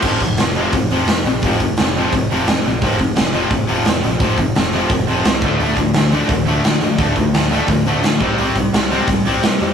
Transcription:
<<
  \new Staff \with { instrumentName = "Distorted electric guitar" } { \clef bass \time 4/4 \key f \major \tempo 4 = 172 <f, c f>8 <f, c>8 <f, c>8 <f, c f>8 <f, c>8 <f, c f>8 <f, c>8 <f, c>8 | <f, c f>8 <f, c>8 <f, c>8 <f, c f>8 <f, c>8 <f, c f>8 <f, c>8 <f, c>8 | <f, c f>8 <f, c>8 <f, c>8 <f, c f>8 <f, c>8 <f, c f>8 <f, c>8 <f, c>8 | <f, c f>8 <f, c>8 <f, c>8 <f, c f>8 <f, c>8 <f, c f>8 <f, c>8 <d a d'>8 |
<d a d'>8 <d a>8 <d a>8 <d a d'>8 <d a>8 <d a d'>8 <d a>8 <d a>8 | <d a d'>8 <d a>8 <d a>8 <d a d'>8 <d a>8 <d a d'>8 <d a>8 <c g c'>8 | <c g c'>8 <c g>8 <c g>8 <c g c'>8 <c g>8 <c g c'>8 <c g>8 <c g>8 | }
  \new Staff \with { instrumentName = "Distorted electric guitar" } { \clef bass \time 4/4 \key f \major <f, c f>8 <f, c>8 <f, c>8 <f, c f>8 <f, c>8 <f, c f>8 <f, c>8 <f, c>8 | <f, c f>8 <f, c>8 <f, c>8 <f, c f>8 <f, c>8 <f, c f>8 <f, c>8 <f, c>8 | <f, c f>8 <f, c>8 <f, c>8 <f, c f>8 <f, c>8 <f, c f>8 <f, c>8 <f, c>8 | <f, c f>8 <f, c>8 <f, c>8 <f, c f>8 <f, c>8 <f, c f>8 <f, c>8 <d f a>8 |
<d f a>8 <d f>8 <d f>8 <d f a>8 <d f>8 <d f a>8 <d f>8 <d f>8 | <d f a>8 <d f>8 <d f>8 <d f a>8 <d f>8 <d f a>8 <d f>8 <c g c'>8 | <c g c'>8 <c g>8 <c g>8 <c g c'>8 <c g>8 <c g c'>8 <c g>8 <c g>8 | }
  \new Staff \with { instrumentName = "Picked electric bass" } { \clef bass \time 4/4 \key f \major f,,8 f,,8 f,,4 f,,8 f,,8 f,8 bes,,8 | f,,8 f,,8 f,,4 f,,8 f,,8 f,8 bes,,8 | f,,8 f,,8 f,,4 f,,8 f,,8 f,8 bes,,8 | f,,8 f,,8 f,,4 f,,8 f,,8 c,8 d,8 |
d,8 d,8 d,4 d,8 d,8 d8 g,8 | d,8 d,8 d,4 d,8 d,8 d8 c,8 | c,8 c,8 c,4 c,8 c,8 c8 f,8 | }
  \new DrumStaff \with { instrumentName = "Drums" } \drummode { \time 4/4 <cymc bd>8 <hho bd>8 <hho sn>8 hho8 <hho bd>8 hho8 <hho sn>8 hho8 | <hho bd>8 <hho bd>8 <hho sn>8 hho8 <hho bd>8 hho8 <hho sn>8 hho8 | <hho bd>8 <hho bd>8 <hho sn>8 hho8 <hho bd>8 hho8 <hho sn>8 hho8 | <hho bd>8 <hho bd>8 <hho sn>8 hho8 <hho bd>8 hho8 <hho sn>8 <hho bd>8 |
hho8 <hho bd>8 <hho sn>8 hho8 <hho bd>8 hho8 <hho sn>8 hho8 | <hho bd>8 <hho bd>8 <hho sn>8 hho8 <hho bd>8 hho8 <hho sn>8 <hho bd>8 | hho8 <hho bd>8 <hho sn>8 hho8 <hho bd>8 hho8 <hho sn>8 hho8 | }
>>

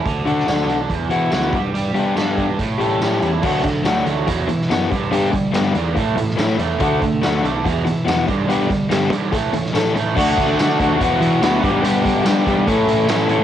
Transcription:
<<
  \new Staff \with { instrumentName = "Overdriven electric guitar" } { \time 4/4 \key d \major \tempo 4 = 143 r8 <d a d' fis'>8 <d a d' fis'>8 r4 <e b e' fis'>8 <e b e' fis'>8 r8 | r8 <g b d' g'>8 <g b d' g'>8 r4 <e g cis' g'>8 <e g cis' g'>8 r8 | <fis a d' fis'>8 r8 <fis a d' fis'>8 r4. <e b e' fis'>8 r8 | <g b d' g'>8 r8 <g b d' g'>8 r4. <e a cis' e'>8 r8 |
<d a d' fis'>8 r8 <d a d' fis'>8 r4. <e b e' fis'>8 r8 | <g b d' g'>8 r8 <g b d' g'>8 r4. <e a cis' a'>8 r8 | <d a d' fis'>4 <d a d' fis'>8 <d a d' fis'>8 <e, b, e b e' fis'>4 <e, b, e b e' fis'>8 <g, d g b d' g'>8 | <g, d g b d' g'>4 <g, d g b d' g'>8 <g, d g b d' g'>8 <a, e a cis' a'>4 <a, e a cis' a'>8 <a, e a cis' a'>8 | }
  \new Staff \with { instrumentName = "Overdriven electric guitar" } { \clef bass \time 4/4 \key d \major d8 d'8 d8 d'8 e,8 e'8 b8 g8 | g8 d'8 g8 d'8 a,8 a'8 g8 e'8 | <d fis a>8 <d fis>8 <d fis>8 <d fis a>8 <e, b, fis>8 <e, b,>8 <e, b,>8 <g, d g>8 | <g, d g>8 <g, d>8 <g, d>8 <g, d g>8 <a, e a>8 <a, e>8 <a, e>8 <a, e a>8 |
<d a d'>8 <d a>8 <d a>8 <d a d'>8 <e, b, e>8 <e, b,>8 <e, b,>8 <g, d g>8 | <g, d g>8 <g, d>8 <g, d>8 <g, d g>8 <a, e a>8 <a, e>8 <a, e>8 <a, e a>8 | <d a d' fis'>4 <d a d' fis'>8 <d a d' fis'>8 <e, b, e b e' fis'>4 <e, b, e b e' fis'>8 <g, d g b d' g'>8 | <g, d g b d' g'>4 <g, d g b d' g'>8 <g, d g b d' g'>8 <a, e a cis' e'>4 <a, e a cis' e'>8 <a, e a cis' e'>8 | }
  \new Staff \with { instrumentName = "Picked electric bass" } { \clef bass \time 4/4 \key d \major d,8 d8 d,8 b,,8 e,8 e8 d,8 g,8 | g,8 g8 g,8 g,8 a,8 a,8 a,8 e,8 | d,8 d8 d,8 d,8 e,8 e8 fis,8 g,8 | g,8 g8 g,8 e,8 a,8 a,8 a,8 e,8 |
d,8 d8 d,8 b,,8 e,8 e8 e,8 g,8 | g,8 g8 g,8 g8 a,8 a,8 a,8 a,8 | d,8 d16 d,16 d8 d,16 ees,16 e,8 e8 d,8 g,16 g,16 | g,8 g16 g,16 g8 g,16 g16 a,8 a,8 a,8 a,16 a,16 | }
  \new DrumStaff \with { instrumentName = "Drums" } \drummode { \time 4/4 <hh bd>8 hh16 sn16 <hh sn tamb>8 hh8 <hh bd>8 hh8 <hh sn tamb>8 <hh bd>8 | hh8 hh8 <hh sn tamb>8 <hh bd>8 <hh bd>8 hh8 <hh sn tamb>8 hh8 | <cymc bd>8 <hh bd>8 <hh sn tamb>8 hh8 <hh bd>8 hh16 sn16 <hh sn tamb>8 <hh bd>8 | hh8 <hh bd>8 <hh sn tamb>8 hh8 <hh bd>8 hh16 sn16 <hh sn tamb>8 hh8 |
<hh bd>8 <hh bd>8 <hh sn tamb>8 hh8 <hh bd>8 hh8 <hh sn tamb>8 <hh bd>8 | hh8 <hh bd>8 <hh sn tamb>8 hh8 <hh bd>8 hh16 sn16 <hh sn tamb>8 hh8 | <cymc bd>8 <hh bd>8 <hh sn tamb>8 <hh bd>8 <hh bd>8 hh8 <hh sn tamb>8 <hh bd>8 | hh8 <hh bd>8 <hh sn tamb>8 <hh bd>8 <hh bd>8 hh8 <hh sn tamb>8 hh8 | }
>>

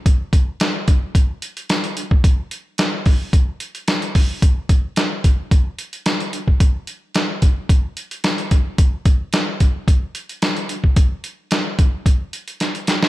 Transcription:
\new DrumStaff \with { instrumentName = "Drums" } \drummode { \time 4/4 \tempo 4 = 110 <hh bd>8 <hh bd>8 <hh sn>8 <hh bd>8 <hh bd>8 hh16 hh16 <hh sn>16 hh16 hh16 bd16 | <hh bd>8 hh8 <hh sn>8 <hho bd>8 <hh bd>8 hh16 hh16 <hh sn>16 hh16 <hho bd>8 | <hh bd>8 <hh bd>8 <hh sn>8 <hh bd>8 <hh bd>8 hh16 hh16 <hh sn>16 hh16 hh16 bd16 | <hh bd>8 hh8 <hh sn>8 <hh bd>8 <hh bd>8 hh16 hh16 <hh sn>16 hh16 <hh bd>8 |
<hh bd>8 <hh bd>8 <hh sn>8 <hh bd>8 <hh bd>8 hh16 hh16 <hh sn>16 hh16 hh16 bd16 | <hh bd>8 hh8 <hh sn>8 <hh bd>8 <hh bd>8 hh16 hh16 <hh sn>16 hh16 <hh sn>16 sn16 | }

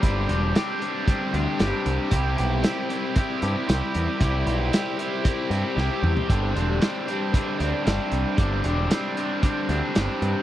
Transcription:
<<
  \new Staff \with { instrumentName = "Overdriven electric guitar" } { \time 4/4 \key c \major \tempo 4 = 115 <g c' d' g'>8 <c' d' g'>8 <g c' d' g'>8 <c' d' g'>8 <g c' d' g'>8 <c' d' g'>8 <g c' d' g'>4 | <c' e' g'>8 <e' g'>8 <c' e' g'>8 <e' g'>8 <c' e' g'>8 <e' g'>8 <c' e' g'>4 | <c' e' g'>8 <e' g'>8 <c' e' g'>8 <e' g'>8 <c' e' g'>8 <e' g'>8 <c' e' g'>4 | <g c' d'>8 <c' d'>8 <g c' d'>8 <c' d'>8 <g c' d'>8 <c' d'>8 <g c' d'>4 |
<g c' d'>8 <c' d'>8 <g c' d'>8 <c' d'>8 <g c' d'>8 <c' d'>8 <g c' d'>4 | }
  \new Staff \with { instrumentName = "Overdriven electric guitar" } { \time 4/4 \key c \major <g, d g c' d' g'>8 <g c' d' g'>8 <g c' d' g'>8 <g c' d' g'>8 <g, d g c' d' g'>8 <g c' d' g'>8 <g c' d' g'>4 | <c g c' e' g'>8 <c' e' g'>8 <g c' e' g'>8 <c' e' g'>8 <c g c' e' g'>8 <c' e' g'>8 <g c' e' g'>4 | <c g c' e' g'>8 <c' e' g'>8 <g c' e' g'>8 <c' e' g'>8 <c g c' e' g'>8 <c' e' g'>8 <g c' e' g'>4 | <g, d g c' d' g'>8 <g c' d' g'>8 <g c' d' g'>8 <g c' d' g'>8 <g, d g c' d' g'>8 <g c' d' g'>8 <g c' d' g'>4 |
<g, d g c' d' g'>8 <g c' d' g'>8 <g c' d' g'>8 <g c' d' g'>8 <g, d g c' d' g'>8 <g c' d' g'>8 <g c' d' g'>4 | }
  \new Staff \with { instrumentName = "Picked electric bass" } { \clef bass \time 4/4 \key c \major g,,8 e,,8 r4. d,16 r16 g,,16 r16 c,16 r16 | c,8 b,,8 r4. g,16 r16 c,16 r16 e,16 r16 | c,8 b,,8 r4. g,16 r16 c,16 r16 e,16 r16 | g,,8 e,,8 r4. d,16 r16 g,,16 r16 c,16 r16 |
g,,8 e,,8 r4. d,16 r16 g,,16 r16 g,16 r16 | }
  \new DrumStaff \with { instrumentName = "Drums" } \drummode { \time 4/4 <hh bd>8 hh8 <hh sn>8 hh8 <hh bd>8 hh8 <hh sn>8 hh8 | <hh bd>8 hh8 <hh sn>8 hh8 <hh bd>8 hh8 <hh sn>8 hh8 | <hh bd>8 hh8 <hh sn>8 hh8 <hh bd>8 hh8 sn8 toml16 tomfh16 | <hh bd>8 hh8 <hh sn>8 hh8 <hh bd>8 hh8 <hh sn>8 hh8 |
<hh bd>8 hh8 <hh sn>8 hh8 <hh bd>8 hh8 <hh sn>8 hh8 | }
>>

